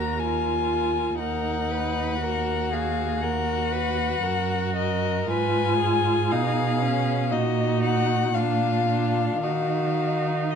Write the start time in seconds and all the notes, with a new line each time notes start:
Already playing: D#2 F#4 A#4 A#5
0.18 F4 G#5
1.19 D#2 D#4 A#4 F#5
1.71 B4
2.20 F#4 A#4
2.73 G#4 F5
3.21 F#4 A#4 F#5
3.72 B4
4.23 F#2 A#4
4.76 A#4 D#5
5.30 G#2 F4 B4 G#5
5.82 G#4
6.32 B2 D#4 F5
6.82 C#4
7.31 A#2 D#4 F#4 D#5
7.83 F#5
8.35 A#2 D4 F4 F5
8.89 D4
9.43 D#3 D#4 F#4 F5
10.50 F#4 D#5